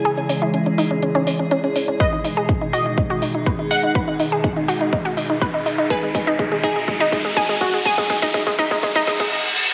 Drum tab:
HH |xxoxxxoxxxoxxxox|xxoxxxoxxxoxxxox|xxoxxxoxxxoxxxox|xxoxxxoxxxoxxxox|
BD |----------------|o---o---o---o---|o---o---o---o---|o-o-o-o-o-o-o-o-|

HH |xxoxxxoxxxox----|
BD |oooooooooooo----|